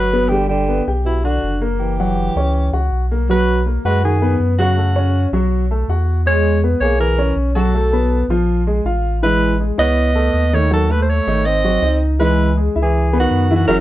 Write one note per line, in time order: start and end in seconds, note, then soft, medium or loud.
0.00 0.81 G1 medium
0.00 0.32 F#3 medium
0.00 0.31 B4 loud
0.13 0.28 B3 medium
0.13 0.28 B4 medium
0.29 0.49 D3 medium
0.29 0.62 G3 medium
0.29 0.48 G4 medium
0.29 0.62 G4 medium
0.49 0.84 D3 medium
0.49 0.84 G4 medium
0.69 0.84 B3 medium
0.69 0.84 B4 medium
0.87 1.39 B1 medium
0.87 1.18 G4 medium
0.87 1.18 G5 medium
1.04 1.22 B2 medium
1.04 1.23 E4 medium
1.24 1.59 D3 medium
1.24 1.55 D4 medium
1.24 1.59 F#4 medium
1.24 1.55 D5 medium
1.43 2.30 F#1 loud
1.61 1.92 A#3 medium
1.61 1.92 A#4 medium
1.80 2.88 E3 medium
1.80 2.87 G4 medium
2.00 2.30 F#3 medium
2.00 2.30 F#5 medium
2.35 2.70 C#2 medium
2.35 2.67 C#4 medium
2.35 2.67 C#5 medium
2.73 2.90 C#2 medium
2.73 3.04 F#4 medium
2.73 3.04 F#5 medium
2.91 3.78 B1 medium
3.11 3.26 A#3 medium
3.11 3.26 A#4 medium
3.29 3.59 F#3 medium
3.29 3.64 F#3 medium
3.29 3.60 F#4 medium
3.29 3.64 B4 loud
3.66 3.81 A#3 medium
3.66 3.81 A#4 medium
3.85 4.36 F#2 medium
3.85 4.02 G#3 medium
3.85 4.15 F#4 medium
3.85 4.02 B4 medium
3.85 4.15 F#5 medium
4.03 4.38 D#3 medium
4.03 4.38 G#4 medium
4.22 4.52 B3 medium
4.22 4.52 B4 medium
4.40 5.27 F#2 medium
4.58 5.29 C#3 medium
4.58 4.74 F#3 medium
4.58 5.29 F#4 medium
4.58 4.74 F#4 medium
4.77 4.92 A3 medium
4.77 4.93 A4 medium
4.96 5.26 C#4 medium
4.96 5.26 C#5 medium
5.32 5.84 B1 medium
5.32 5.63 F#3 medium
5.32 5.64 F#4 medium
5.71 5.86 A3 medium
5.71 5.86 A4 medium
5.88 6.75 E2 medium
5.88 6.20 F#4 medium
5.88 6.19 F#5 medium
6.26 6.56 G#3 medium
6.26 6.61 G#3 medium
6.26 6.56 G#4 medium
6.26 6.61 C#5 loud
6.64 6.78 B3 medium
6.64 6.79 B4 medium
6.80 7.32 B1 medium
6.80 6.99 A#3 medium
6.80 7.12 G#4 medium
6.80 6.98 C#5 medium
6.80 7.12 G#5 medium
6.99 7.34 E3 medium
6.99 7.35 A#4 loud
7.18 7.49 C#4 medium
7.18 7.49 C#5 medium
7.36 8.23 B1 loud
7.55 8.25 F#3 medium
7.55 7.71 F#3 medium
7.55 7.71 F#4 medium
7.55 8.26 A4 medium
7.75 7.89 A3 medium
7.75 7.90 A4 medium
7.93 8.23 B3 medium
7.93 8.23 B4 medium
8.28 8.81 A#1 medium
8.28 8.60 F3 medium
8.28 8.60 F4 medium
8.67 8.82 G#3 medium
8.67 8.82 G#4 medium
8.84 9.72 A1 medium
8.84 9.16 F4 medium
8.84 9.16 F5 medium
9.23 9.53 E3 medium
9.23 9.58 G#3 medium
9.23 9.53 E4 medium
9.23 9.57 B4 medium
9.60 9.75 G#3 medium
9.60 9.75 G#4 medium
9.78 10.30 C#2 medium
9.78 10.56 B3 loud
9.78 10.08 E4 medium
9.78 10.09 C#5 medium
9.78 10.56 D#5 loud
10.15 10.46 A3 medium
10.15 10.46 A4 medium
10.33 11.21 D#2 loud
10.53 10.68 D#3 medium
10.53 10.72 A3 medium
10.53 10.68 D#4 medium
10.53 10.72 C#5 medium
10.71 10.93 D#3 medium
10.71 10.86 F#3 medium
10.71 10.86 F#4 medium
10.71 10.93 A4 medium
10.90 11.20 A3 medium
10.90 11.01 A3 medium
10.90 11.20 A4 medium
10.90 11.02 B4 medium
11.02 11.09 A3 medium
11.02 11.11 C5 medium
11.09 11.48 A3 medium
11.09 11.47 C#5 loud
11.27 11.79 G#1 medium
11.27 11.58 D#3 medium
11.27 11.58 D#4 medium
11.45 12.02 C4 medium
11.45 12.01 D#5 loud
11.64 11.79 F#3 medium
11.64 11.79 F#4 medium
11.82 12.69 C#2 loud
11.82 12.13 D#4 medium
11.82 12.13 D#5 medium
12.19 12.50 E3 medium
12.19 12.54 G#3 medium
12.19 12.50 E4 medium
12.19 12.54 B4 medium
12.57 12.72 G#3 medium
12.57 12.72 G#4 medium
12.76 13.27 C#2 medium
12.76 13.06 E4 medium
12.76 13.06 E5 medium
12.82 13.16 E3 medium
12.82 13.17 G#4 medium
13.13 13.43 B3 medium
13.13 13.43 B4 medium
13.19 13.53 D#3 medium
13.19 13.54 F#4 medium
13.31 13.65 F#2 medium
13.51 13.65 E3 medium
13.51 13.66 E4 medium
13.56 13.68 D#3 medium
13.56 13.67 F#4 medium
13.68 13.80 F#1 medium
13.68 13.78 F#3 medium
13.68 13.80 C#4 medium
13.68 13.80 E4 loud
13.68 13.80 F#4 loud
13.68 13.77 A#4 medium